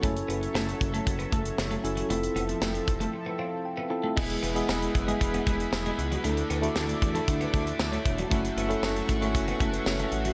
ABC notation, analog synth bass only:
X:1
M:4/4
L:1/8
Q:1/4=116
K:Emix
V:1 name="Analog synth bass" clef=bass
F,,, F,,, F,,, F,,, F,,, F,,, F,,, F,,, | =F,,, F,,, F,,, F,,, z4 | E,,, E,,, E,,, F,,, E,,, E,,, E,,, C,, | D,, D,, D,, E,, D,, D,, D,, E,,, |
F,,, F,,, F,,, G,,, F,,, F,,, F,,, A,,, |]